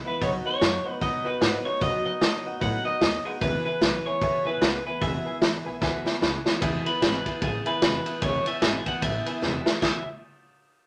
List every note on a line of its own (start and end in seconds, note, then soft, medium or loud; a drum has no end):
0.05 0.22 E3 soft
0.05 0.22 G#3 soft
0.05 0.21 B3 medium
0.05 0.21 E4 soft
0.05 0.15 B4 medium
0.05 0.23 B4 medium
0.05 0.15 E5 medium
0.05 0.16 F#5 medium
0.21 0.37 B1 medium
0.21 0.46 B2 medium
0.21 0.46 F#3 medium
0.21 0.46 B3 medium
0.21 0.45 D#4 medium
0.21 0.44 F#4 medium
0.21 0.36 B4 loud
0.21 0.29 C#5 medium
0.21 0.36 D#5 medium
0.21 0.36 F#5 loud
0.21 kick loud
0.21 open hi-hat medium
0.44 0.61 B3 soft
0.44 0.61 D#4 soft
0.44 0.62 F#4 soft
0.44 0.55 B4 medium
0.44 0.91 C#5 medium
0.44 0.55 D#5 medium
0.44 0.55 F#5 medium
0.60 0.77 F#2 medium
0.60 0.85 F#3 medium
0.60 0.86 B3 medium
0.60 0.85 D#4 medium
0.60 0.84 F#4 medium
0.60 0.75 B4 medium
0.60 0.76 D#5 medium
0.60 0.76 F#5 medium
0.60 snare loud
0.60 open hi-hat soft
0.84 1.01 B3 soft
0.84 1.01 D#4 medium
0.84 1.02 F#4 medium
0.84 0.95 B4 medium
0.84 0.95 D#5 medium
0.84 0.95 F#5 medium
0.91 1.02 B4 medium
1.00 1.17 G#2 medium
1.00 1.25 B2 medium
1.00 1.26 F#3 medium
1.00 1.26 B3 medium
1.00 1.25 D#4 medium
1.00 1.23 F#4 medium
1.00 1.15 B4 loud
1.00 1.16 D#5 medium
1.00 1.27 D#5 medium
1.00 1.16 F#5 loud
1.00 kick loud
1.00 open hi-hat soft
1.24 1.36 E2 medium
1.24 1.41 B3 soft
1.24 1.41 D#4 soft
1.24 1.41 F#4 medium
1.24 1.35 B4 medium
1.24 1.67 B4 loud
1.24 1.35 D#5 medium
1.24 1.36 F#5 medium
1.40 1.57 G#2 loud
1.40 1.65 F#3 medium
1.40 1.66 B3 medium
1.40 1.65 D#4 medium
1.40 1.64 F#4 medium
1.40 1.55 B4 medium
1.40 1.56 D#5 medium
1.40 1.56 F#5 medium
1.40 snare loud
1.40 open hi-hat soft
1.65 1.80 B3 soft
1.65 1.80 D#4 soft
1.65 1.81 F#4 medium
1.65 1.75 B4 medium
1.65 1.82 C#5 medium
1.65 1.75 D#5 medium
1.65 1.76 F#5 medium
1.80 1.97 B1 medium
1.80 2.05 B2 medium
1.80 2.05 F#3 medium
1.80 2.06 B3 medium
1.80 2.05 D#4 medium
1.80 2.04 F#4 medium
1.80 1.95 B4 loud
1.80 1.96 D#5 medium
1.80 2.05 D#5 loud
1.80 1.96 F#5 loud
1.80 kick loud
1.80 open hi-hat medium
2.05 2.21 B3 soft
2.05 2.21 D#4 soft
2.05 2.22 F#4 medium
2.05 2.15 B4 medium
2.05 2.15 D#5 medium
2.05 2.61 D#5 medium
2.05 2.16 F#5 medium
2.05 muted upright bass stroke medium
2.21 2.37 D#2 loud
2.21 2.45 F#3 medium
2.21 2.46 B3 medium
2.21 2.46 D#4 medium
2.21 2.44 F#4 medium
2.21 2.36 B4 medium
2.21 2.36 D#5 medium
2.21 2.37 A5 medium
2.21 snare loud
2.21 open hi-hat soft
2.45 2.56 F#2 medium
2.45 2.60 B3 soft
2.45 2.61 D#4 medium
2.45 2.61 F#4 medium
2.45 2.55 B4 medium
2.45 2.56 D#5 medium
2.45 2.56 F#5 medium
2.60 2.77 A2 loud
2.60 2.85 B2 medium
2.60 2.86 F#3 medium
2.60 2.86 B3 medium
2.60 2.85 D#4 medium
2.60 2.84 F#4 medium
2.60 2.75 B4 loud
2.60 2.76 D#5 medium
2.60 2.85 F#5 loud
2.60 2.76 F#5 loud
2.60 kick loud
2.60 open hi-hat medium
2.85 3.00 B3 soft
2.85 3.01 D#4 soft
2.85 3.01 F#4 medium
2.85 2.95 B4 medium
2.85 3.27 D#5 loud
2.85 2.95 D#5 medium
2.85 2.96 F#5 medium
2.85 muted upright bass stroke medium
3.00 3.17 D#2 medium
3.00 3.25 F#3 medium
3.00 3.25 D#4 medium
3.00 3.16 B4 medium
3.00 3.16 D#5 medium
3.00 3.17 G#5 medium
3.00 snare loud
3.00 open hi-hat medium
3.25 3.41 B3 soft
3.25 3.42 D#4 soft
3.25 3.41 F#4 medium
3.25 3.30 G#4 medium
3.25 3.35 B4 medium
3.25 3.35 D#5 medium
3.25 3.36 F#5 medium
3.25 muted upright bass stroke medium
3.41 3.57 E1 medium
3.41 3.65 E2 medium
3.41 3.66 B2 medium
3.41 3.66 E3 medium
3.41 3.66 B3 loud
3.41 3.65 E4 medium
3.41 3.64 G#4 medium
3.41 3.56 B4 loud
3.41 3.64 B4 loud
3.41 3.56 E5 medium
3.41 3.57 G#5 loud
3.41 kick loud
3.41 open hi-hat medium
3.65 3.80 E3 soft
3.65 3.80 B3 soft
3.65 3.81 E4 medium
3.65 3.82 G#4 medium
3.65 3.75 B4 medium
3.65 4.07 B4 medium
3.65 3.75 E5 medium
3.65 3.76 G#5 medium
3.65 muted upright bass stroke medium
3.81 3.97 B1 medium
3.81 4.05 E3 medium
3.81 4.06 B3 medium
3.81 4.06 E4 medium
3.81 4.05 G#4 medium
3.81 3.96 B4 medium
3.81 3.96 E5 medium
3.81 3.97 G#5 medium
3.81 snare loud
3.81 open hi-hat medium
4.05 4.21 E3 soft
4.05 4.21 B3 soft
4.05 4.21 E4 medium
4.05 4.22 G#4 medium
4.05 4.15 B4 medium
4.05 4.43 C#5 loud
4.05 4.16 E5 medium
4.05 4.16 G#5 medium
4.05 muted upright bass stroke medium
4.21 4.37 C#2 medium
4.21 4.46 E2 medium
4.21 4.46 B2 medium
4.21 4.46 E3 loud
4.21 4.45 B3 medium
4.21 4.45 E4 medium
4.21 4.44 G#4 loud
4.21 4.36 B4 medium
4.21 4.37 E5 medium
4.21 4.37 G#5 loud
4.21 kick loud
4.21 open hi-hat soft
4.45 4.56 A1 medium
4.45 4.60 E3 soft
4.45 4.61 B3 medium
4.45 4.61 E4 medium
4.45 4.61 G#4 medium
4.45 4.55 B4 medium
4.45 4.83 B4 loud
4.45 4.56 E5 medium
4.45 4.56 G#5 medium
4.61 4.77 C#2 medium
4.61 4.86 E3 medium
4.61 4.86 B3 medium
4.61 4.86 E4 medium
4.61 4.85 G#4 medium
4.61 4.76 B4 medium
4.61 4.76 E5 medium
4.61 4.77 F#5 medium
4.61 snare loud
4.61 open hi-hat soft
4.85 5.00 E3 soft
4.85 5.01 B3 soft
4.85 5.01 E4 medium
4.85 5.01 G#4 medium
4.85 4.95 B4 medium
4.85 5.01 B4 medium
4.85 4.95 E5 medium
4.85 4.96 G#5 medium
4.85 muted upright bass stroke medium
5.01 5.17 E1 medium
5.01 5.25 E2 medium
5.01 5.26 B2 medium
5.01 5.26 E3 medium
5.01 5.26 B3 medium
5.01 5.25 E4 loud
5.01 5.25 G#4 medium
5.01 5.16 B4 loud
5.01 6.18 E5 medium
5.01 5.16 E5 medium
5.01 5.16 G#5 loud
5.01 kick loud
5.01 open hi-hat medium
5.25 5.40 E3 soft
5.25 5.41 B3 soft
5.25 5.42 E4 soft
5.25 5.42 G#4 medium
5.25 5.35 B4 medium
5.25 5.35 E5 medium
5.25 5.36 G#5 medium
5.41 5.57 G#1 medium
5.41 5.66 E3 medium
5.41 5.66 B3 medium
5.41 5.66 E4 medium
5.41 5.64 G#4 medium
5.41 5.56 B4 medium
5.41 5.56 E5 medium
5.41 5.57 B5 medium
5.41 snare loud
5.41 open hi-hat soft
5.65 5.76 B1 loud
5.65 5.82 E3 medium
5.65 5.82 B3 medium
5.65 5.82 E4 medium
5.65 5.82 G#4 medium
5.65 5.75 B4 loud
5.65 5.75 E5 medium
5.65 5.76 G#5 loud
5.81 5.97 D2 medium
5.81 6.06 E2 medium
5.81 6.06 B2 medium
5.81 6.06 E3 medium
5.81 6.06 B3 loud
5.81 6.05 E4 medium
5.81 6.04 G#4 loud
5.81 5.96 B4 loud
5.81 5.96 E5 loud
5.81 5.97 G#5 loud
5.81 kick loud
5.81 snare medium
6.05 6.20 E3 medium
6.05 6.21 B3 medium
6.05 6.22 E4 medium
6.05 6.22 G#4 medium
6.05 6.15 B4 medium
6.05 6.16 E5 medium
6.05 6.16 G#5 loud
6.05 muted upright bass stroke medium
6.05 snare medium
6.21 6.37 C#2 medium
6.21 6.46 E3 medium
6.21 6.46 B3 medium
6.21 6.45 E4 medium
6.21 6.45 G#4 medium
6.21 6.36 B4 medium
6.21 6.36 E5 medium
6.21 6.37 B5 loud
6.21 snare medium
6.45 6.61 E3 soft
6.45 6.62 B3 medium
6.45 6.62 E4 soft
6.45 6.62 G#4 medium
6.45 6.55 B4 medium
6.45 6.55 E5 medium
6.45 6.56 G#5 loud
6.45 snare loud
6.60 6.84 E1 medium
6.60 6.86 E2 medium
6.60 6.86 B2 medium
6.60 6.86 E3 medium
6.60 6.86 B3 medium
6.60 6.86 E4 medium
6.60 6.85 G#4 loud
6.60 6.76 B4 loud
6.60 6.76 E5 loud
6.60 6.77 G#5 loud
6.60 kick loud
6.60 ride medium
6.85 7.02 E3 soft
6.85 7.02 B3 soft
6.85 7.02 E4 soft
6.85 7.02 G#4 medium
6.85 6.95 B4 medium
6.85 7.44 B4 medium
6.85 6.95 E5 medium
6.85 6.96 G#5 medium
6.85 ride medium
7.00 7.24 G#1 loud
7.00 7.26 E2 medium
7.00 7.26 B2 medium
7.00 7.27 E3 medium
7.00 7.26 B3 medium
7.00 7.26 E4 loud
7.00 7.25 G#4 medium
7.00 7.16 B4 medium
7.00 7.16 E5 medium
7.00 7.17 G#5 medium
7.00 snare medium
7.00 ride medium
7.24 7.41 E3 soft
7.24 7.41 B3 soft
7.24 7.42 E4 medium
7.24 7.42 G#4 medium
7.24 7.35 B4 medium
7.24 7.35 E5 medium
7.24 7.36 G#5 medium
7.24 muted upright bass stroke medium
7.24 kick medium
7.24 ride medium
7.41 7.64 A1 medium
7.41 7.66 E3 medium
7.41 7.66 B3 medium
7.41 7.65 E4 medium
7.41 7.67 G#4 medium
7.41 7.64 G#4 medium
7.41 7.56 B4 medium
7.41 7.56 E5 medium
7.41 7.57 G#5 medium
7.41 kick loud
7.41 ride medium
7.65 7.82 E3 soft
7.65 7.82 B3 soft
7.65 7.82 E4 medium
7.65 7.82 G#4 medium
7.65 7.75 B4 loud
7.65 7.82 B4 medium
7.65 7.75 E5 medium
7.65 7.76 G#5 loud
7.65 muted upright bass stroke medium
7.65 ride medium
7.81 8.04 E1 loud
7.81 8.06 E2 medium
7.81 8.06 B2 medium
7.81 8.06 E3 medium
7.81 8.06 B3 medium
7.81 8.05 E4 medium
7.81 8.04 G#4 medium
7.81 7.96 B4 loud
7.81 8.23 B4 medium
7.81 7.96 E5 medium
7.81 7.97 G#5 loud
7.81 snare loud
7.81 ride medium
8.05 8.21 E3 soft
8.05 8.22 B3 soft
8.05 8.22 E4 soft
8.05 8.22 G#4 medium
8.05 8.15 B4 medium
8.05 8.16 E5 medium
8.05 8.16 G#5 medium
8.05 muted upright bass stroke medium
8.05 ride medium
8.21 8.44 E1 loud
8.21 8.46 E2 medium
8.21 8.46 B2 medium
8.21 8.46 E3 medium
8.21 8.46 B3 medium
8.21 8.46 E4 medium
8.21 8.45 G#4 medium
8.21 8.36 B4 loud
8.21 8.45 C#5 loud
8.21 8.36 E5 medium
8.21 8.37 G#5 loud
8.21 kick loud
8.21 ride medium
8.45 8.62 E3 soft
8.45 8.62 B3 soft
8.45 8.62 E4 medium
8.45 8.62 G#4 medium
8.45 8.55 B4 medium
8.45 8.56 E5 medium
8.45 8.63 E5 medium
8.45 8.56 G#5 medium
8.45 ride medium
8.61 8.84 G#1 medium
8.61 8.86 E2 medium
8.61 8.87 B2 medium
8.61 8.87 E3 medium
8.61 8.87 B3 medium
8.61 8.86 E4 loud
8.61 8.85 G#4 medium
8.61 8.76 B4 medium
8.61 8.76 E5 medium
8.61 8.77 G#5 medium
8.61 8.88 G#5 loud
8.61 snare loud
8.61 ride medium
8.85 9.01 E3 soft
8.85 9.02 B3 soft
8.85 9.03 E4 soft
8.85 9.02 G#4 medium
8.85 8.95 B4 medium
8.85 8.96 E5 medium
8.85 9.03 F#5 loud
8.85 8.96 G#5 medium
8.85 muted upright bass stroke medium
8.85 kick medium
8.85 ride medium
9.02 9.24 A1 medium
9.02 9.26 E3 medium
9.02 9.27 B3 medium
9.02 9.26 E4 medium
9.02 9.25 G#4 medium
9.02 9.16 B4 medium
9.02 9.17 E5 medium
9.02 9.63 E5 medium
9.02 9.17 G#5 medium
9.02 kick loud
9.02 ride medium
9.26 9.41 E3 soft
9.26 9.41 B3 medium
9.26 9.42 E4 medium
9.26 9.42 G#4 medium
9.26 9.36 B4 loud
9.26 9.36 E5 medium
9.26 9.37 G#5 loud
9.26 muted upright bass stroke medium
9.26 ride medium
9.41 9.65 E1 medium
9.41 9.66 E2 medium
9.41 9.66 B2 medium
9.41 9.66 E3 medium
9.41 9.66 B3 medium
9.41 9.66 E4 medium
9.41 9.64 G#4 medium
9.41 9.57 B4 loud
9.41 9.57 E5 medium
9.41 9.58 G#5 loud
9.41 snare medium
9.65 9.82 E3 soft
9.65 9.82 B3 soft
9.65 9.83 E4 medium
9.65 9.82 G#4 medium
9.65 9.76 B4 medium
9.65 9.76 E5 medium
9.65 9.76 G#5 loud
9.65 muted upright bass stroke medium
9.65 snare loud
9.82 10.05 E1 loud
9.82 10.01 E2 medium
9.82 10.02 B2 medium
9.82 10.02 E3 medium
9.82 10.02 B3 loud
9.82 10.02 E4 medium
9.82 10.03 G#4 medium
9.82 10.05 B4 medium
9.82 10.05 E5 medium
9.82 10.05 G#5 medium
9.82 kick loud
9.82 snare loud
9.82 china medium